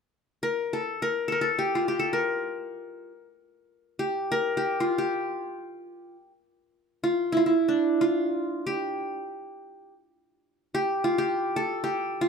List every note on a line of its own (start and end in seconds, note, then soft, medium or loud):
0.43 0.79 A#4 medium
0.73 1.08 A4 medium
1.02 1.32 A#4 medium
1.28 1.38 A4 medium
1.32 1.47 A#4 medium
1.41 1.99 A4 medium
1.59 1.88 G4 medium
1.75 3.10 F4 medium
1.88 3.14 G4 medium
1.99 2.19 A4 medium
2.13 3.25 A#4 medium
3.99 4.57 G4 medium
4.32 5.44 A#4 medium
4.57 4.98 G4 medium
4.80 6.15 F4 medium
4.98 6.30 G4 medium
7.04 7.36 F4 medium
7.32 7.43 E4 medium
7.37 7.52 F4 medium
7.46 8.07 E4 medium
7.68 9.18 D4 medium
8.01 9.36 F4 medium
8.67 9.92 G4 medium
10.75 11.18 G4 medium
11.04 12.21 F4 medium
11.18 11.83 G4 medium
11.56 12.29 A4 medium
11.84 12.29 G4 medium
12.21 12.29 F4 medium